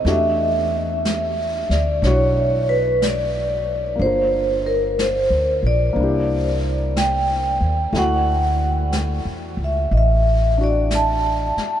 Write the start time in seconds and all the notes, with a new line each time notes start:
0.05 E2 A3 D4 F#4 G4 E5, brush sweep, snare
1.05 brush sweep, snare, hi-hat pedal
1.70 D2 D5, snare
2.02 B1 D4 E4 C#5, brush sweep, snare
2.06 F#4
2.69 B4
3.02 D5, brush sweep, snare, hi-hat pedal
3.96 G1 A#3 D4
4.01 F4 C5, brush sweep
4.06 A#4
4.66 A#4
4.99 C5, brush sweep, snare, hi-hat pedal
5.30 D2
5.63 A#1
5.67 D5
5.93 C2 A#3 D4
5.98 E4, brush sweep
6.03 G4
6.97 G5, brush sweep, snare, hi-hat pedal
7.61 D#2
7.93 D2 A3 E4, brush sweep, snare
7.98 F#4 F#5
8.92 brush sweep, snare, hi-hat pedal
9.25 E2
9.57 C#2
9.64 E5
9.91 A1 D#5, brush sweep
9.97 E5
10.58 D4 F#4
10.63 D5
10.91 brush sweep, snare, hi-hat pedal
10.95 A5
11.57 muted upright bass stroke, snare